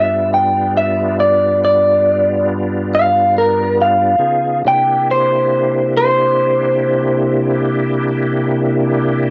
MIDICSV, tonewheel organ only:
0, 0, Header, 1, 2, 480
1, 0, Start_track
1, 0, Tempo, 870827
1, 2312, Time_signature, 12, 3, 24, 8
1, 5127, End_track
2, 0, Start_track
2, 0, Title_t, "Tonewheel organ"
2, 0, Program_c, 0, 16
2, 0, Note_on_c, 0, 43, 65
2, 0, Note_on_c, 0, 55, 62
2, 0, Note_on_c, 0, 59, 59
2, 0, Note_on_c, 0, 62, 64
2, 0, Note_on_c, 0, 65, 62
2, 2291, Note_off_c, 0, 62, 0
2, 2292, Note_off_c, 0, 55, 0
2, 2293, Note_off_c, 0, 43, 0
2, 2293, Note_off_c, 0, 59, 0
2, 2293, Note_off_c, 0, 65, 0
2, 2306, Note_on_c, 0, 63, 53
2, 2309, Note_on_c, 0, 49, 54
2, 2309, Note_on_c, 0, 59, 53
2, 2310, Note_on_c, 0, 65, 57
2, 2310, Note_on_c, 0, 68, 56
2, 2549, Note_off_c, 0, 63, 0
2, 2551, Note_off_c, 0, 49, 0
2, 2551, Note_off_c, 0, 59, 0
2, 2551, Note_off_c, 0, 65, 0
2, 2551, Note_off_c, 0, 68, 0
2, 2559, Note_on_c, 0, 62, 62
2, 2561, Note_on_c, 0, 58, 59
2, 2561, Note_on_c, 0, 67, 57
2, 2562, Note_on_c, 0, 48, 61
2, 2562, Note_on_c, 0, 64, 58
2, 5127, Note_off_c, 0, 48, 0
2, 5127, Note_off_c, 0, 58, 0
2, 5127, Note_off_c, 0, 62, 0
2, 5127, Note_off_c, 0, 64, 0
2, 5127, Note_off_c, 0, 67, 0
2, 5127, End_track
0, 0, End_of_file